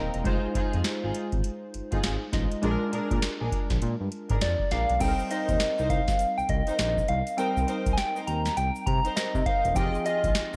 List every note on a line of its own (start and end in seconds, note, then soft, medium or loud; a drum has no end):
0.00 0.16 C4 medium
0.00 0.16 D#4 medium
0.00 0.16 A#4 medium
0.00 0.13 D#5 medium
0.00 0.27 F5 medium
0.00 0.27 G5 medium
0.00 0.27 A#5 medium
0.00 0.27 C6 medium
0.14 0.23 E1 medium
0.14 0.42 D#5 medium
0.14 closed hi-hat medium
0.24 0.39 F1 loud
0.24 2.29 G#3 medium
0.24 2.29 D#4 medium
0.24 0.46 D#4 medium
0.24 0.46 F4 medium
0.24 2.29 F4 medium
0.24 0.46 G#4 medium
0.24 2.30 C5 medium
0.24 kick loud
0.24 closed hi-hat medium
0.55 0.62 F2 soft
0.55 0.75 D#4 medium
0.55 0.75 F4 medium
0.55 0.76 G#4 medium
0.55 kick medium
0.55 closed hi-hat medium
0.73 0.82 F2 loud
0.73 closed hi-hat soft
0.84 snare loud
0.84 closed hi-hat medium
1.02 1.12 G#1 medium
1.02 1.17 D#4 medium
1.02 1.18 F4 medium
1.02 1.18 G#4 medium
1.15 closed hi-hat medium
1.32 1.41 G#1 loud
1.32 kick medium
1.32 closed hi-hat soft
1.44 closed hi-hat medium
1.74 1.81 G1 soft
1.74 closed hi-hat medium
1.92 2.01 G1 medium
1.92 2.07 D#4 medium
1.92 2.07 F4 medium
1.92 2.07 G#4 medium
1.92 kick medium
1.92 closed hi-hat medium
2.03 2.17 G#1 loud
2.03 snare loud
2.03 closed hi-hat medium
2.32 2.47 A1 medium
2.32 2.61 G#3 medium
2.32 2.63 D#4 medium
2.32 2.62 F4 medium
2.32 2.63 D#5 medium
2.32 kick medium
2.32 snare medium
2.32 closed hi-hat medium
2.52 closed hi-hat soft
2.62 2.77 A#1 loud
2.62 4.96 G#3 medium
2.62 2.83 D4 medium
2.62 4.96 D4 medium
2.62 4.97 F4 medium
2.62 2.83 G#4 medium
2.62 2.72 G#4 medium
2.62 2.83 A#4 loud
2.62 closed hi-hat medium
2.71 5.01 A#4 medium
2.92 3.00 A#2 soft
2.92 3.13 D4 medium
2.92 3.13 G#4 medium
2.92 3.13 A#4 medium
2.92 closed hi-hat medium
3.11 3.19 A#2 medium
3.11 kick medium
3.11 closed hi-hat medium
3.22 snare loud
3.22 closed hi-hat medium
3.40 3.49 A#1 medium
3.40 3.55 D4 medium
3.40 3.55 G#4 medium
3.40 3.56 A#4 medium
3.52 kick medium
3.52 closed hi-hat medium
3.70 3.79 A#1 medium
3.70 kick medium
3.70 snare medium
3.70 closed hi-hat soft
3.82 3.96 A#2 loud
3.82 closed hi-hat medium
4.00 4.09 G2 medium
4.12 closed hi-hat medium
4.30 4.39 G#2 medium
4.30 4.44 D4 medium
4.30 4.45 G#4 medium
4.30 4.45 A#4 medium
4.30 kick medium
4.30 closed hi-hat medium
4.41 4.55 F2 loud
4.41 4.73 D5 medium
4.41 snare loud
4.41 closed hi-hat medium
4.59 kick medium
4.71 4.85 A#1 loud
4.71 4.91 D4 medium
4.71 4.91 G#4 medium
4.71 4.92 A#4 medium
4.71 5.03 F5 loud
4.71 snare medium
4.71 closed hi-hat medium
4.89 4.98 B1 medium
4.89 closed hi-hat soft
4.99 5.14 C2 loud
4.99 7.34 G3 medium
4.99 7.34 C4 medium
4.99 5.21 D#4 medium
4.99 7.34 D#4 medium
4.99 5.09 A4 medium
4.99 5.21 A#4 medium
4.99 5.21 C5 medium
4.99 5.33 G5 loud
4.99 kick loud
4.99 closed hi-hat medium
4.99 crash loud
4.99 shaker medium
5.08 7.38 A#4 medium
5.19 shaker medium
5.30 5.50 D#4 medium
5.30 5.51 A#4 medium
5.30 5.51 C5 medium
5.30 5.91 D#5 medium
5.30 closed hi-hat medium
5.30 shaker medium
5.48 5.57 D#2 medium
5.48 kick medium
5.48 closed hi-hat medium
5.48 shaker soft
5.60 5.68 C2 soft
5.60 snare loud
5.60 closed hi-hat medium
5.60 shaker medium
5.78 6.01 C2 loud
5.78 5.93 D#4 medium
5.78 5.93 A#4 medium
5.78 5.93 C5 medium
5.78 shaker medium
5.90 6.39 F5 loud
5.90 kick medium
5.90 closed hi-hat medium
5.90 shaker soft
6.08 kick loud
6.08 snare medium
6.08 closed hi-hat soft
6.08 shaker medium
6.19 closed hi-hat medium
6.19 shaker medium
6.38 6.43 C2 soft
6.38 6.51 G5 medium
6.38 shaker soft
6.49 6.63 C2 medium
6.49 7.10 D#5 medium
6.49 kick medium
6.49 closed hi-hat medium
6.67 6.82 D#4 medium
6.67 6.82 A#4 medium
6.67 6.82 C5 medium
6.67 closed hi-hat medium
6.67 shaker soft
6.79 7.01 A#1 loud
6.79 snare loud
6.79 closed hi-hat medium
6.79 shaker medium
6.97 kick medium
6.97 shaker soft
7.08 7.22 C2 loud
7.08 7.39 F5 loud
7.08 closed hi-hat medium
7.27 closed hi-hat medium
7.27 shaker soft
7.37 9.71 G3 medium
7.37 9.72 C4 medium
7.37 7.58 D#4 medium
7.37 9.72 D#4 medium
7.37 7.58 A#4 medium
7.37 9.72 A#4 medium
7.37 7.59 C5 loud
7.37 7.92 G5 loud
7.37 closed hi-hat medium
7.37 shaker medium
7.57 7.65 C2 loud
7.57 shaker medium
7.67 7.88 D#4 medium
7.67 7.88 A#4 medium
7.67 7.88 C5 medium
7.67 closed hi-hat medium
7.67 shaker soft
7.86 7.95 C2 medium
7.86 kick medium
7.86 closed hi-hat medium
7.86 shaker medium
7.93 7.99 G#5 medium
7.98 8.29 G5 loud
7.98 snare loud
7.98 closed hi-hat medium
7.98 shaker medium
8.15 8.30 D#4 medium
8.15 8.30 A#4 medium
8.15 8.31 C5 medium
8.15 shaker soft
8.27 8.50 D#2 medium
8.27 8.57 A#5 loud
8.27 closed hi-hat medium
8.27 shaker soft
8.45 snare medium
8.45 closed hi-hat soft
8.45 shaker medium
8.57 8.71 C2 medium
8.57 8.88 G5 loud
8.57 closed hi-hat medium
8.57 shaker medium
8.76 shaker soft
8.86 9.00 C3 loud
8.86 9.18 A#5 loud
8.86 kick loud
8.86 closed hi-hat medium
9.04 9.19 D#4 medium
9.04 9.20 A#4 medium
9.04 9.20 C5 medium
9.04 closed hi-hat medium
9.04 shaker soft
9.16 9.48 D#5 medium
9.16 snare loud
9.16 closed hi-hat medium
9.16 shaker medium
9.34 9.43 C3 medium
9.34 kick medium
9.34 shaker soft
9.46 9.66 D#4 medium
9.46 9.66 A#4 medium
9.46 9.67 C5 medium
9.46 9.77 F5 loud
9.46 kick medium
9.46 closed hi-hat medium
9.64 9.73 E1 medium
9.64 closed hi-hat medium
9.64 shaker soft
9.74 9.89 F1 loud
9.74 10.56 F3 medium
9.74 10.56 C4 medium
9.74 10.56 D#4 medium
9.74 9.96 F4 medium
9.74 9.84 G4 medium
9.74 9.96 G#4 medium
9.74 9.96 D#5 loud
9.74 10.07 G5 loud
9.74 kick loud
9.74 closed hi-hat medium
9.74 shaker medium
9.83 10.56 G#4 medium
9.94 shaker medium
10.05 10.26 F4 medium
10.05 10.26 G#4 medium
10.05 10.26 D#5 medium
10.05 10.56 D#5 loud
10.05 closed hi-hat medium
10.05 shaker medium
10.24 10.32 A#1 medium
10.24 kick medium
10.24 closed hi-hat medium
10.24 shaker medium
10.35 10.43 G#1 soft
10.35 snare loud
10.35 closed hi-hat medium
10.35 shaker medium
10.53 10.56 F4 medium